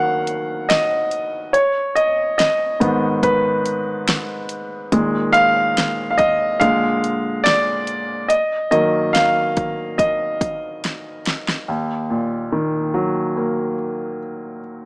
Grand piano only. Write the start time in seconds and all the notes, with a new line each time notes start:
Already playing: D#3 F#3 A#3 F5 F#5
0.69 D#5
1.53 C#5
1.95 D#5
2.38 D#5
2.80 G#2 D#3 B3
3.23 B4
4.92 A#2 D#3 G#3
5.33 F5
6.11 F5
6.18 D#5
6.60 A#2 D3 G#3 F5
7.44 D5
8.28 D#5
8.71 D#3 F#3 A#3 D#5
9.13 F5
9.98 D#5
11.68 D#2
12.10 A#2
12.52 D#3
12.94 F#3
13.37 A#3